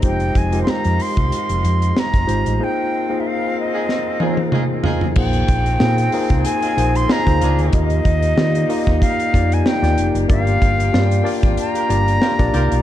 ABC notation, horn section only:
X:1
M:4/4
L:1/16
Q:"Swing 16ths" 1/4=94
K:Bbmix
V:1 name="Horn section"
z16 | z6 z [EFA] z2 [EFA] z [EFA] z [EFA]2 | z8 z [EFA] z2 [EFA] z [DFA]2- | [DFA] z12 z3 |
z8 z [FGB] z2 [FGB] z [FGB]2 |]